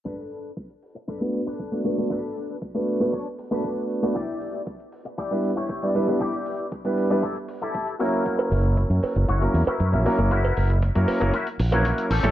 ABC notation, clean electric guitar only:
X:1
M:4/4
L:1/16
Q:1/4=117
K:Bm
V:1 name="Clean electric guitar"
[DAB]4 z4 [DAB] z2 [DAB]3 z2 | [DAB]4 z4 [DAc] z2 [DAB]3 z2 | [EGd]4 z4 [EGd] z2 [EGc]3 z2 | [EGd]4 z4 [EGA] z2 [EGA]3 [EF^A]2- |
[EF^A]4 z4 [EFc] z2 [EFA]3 z2 | [EF^A]4 z4 [EFA] z2 [EFc]3 [CG=A]2 |]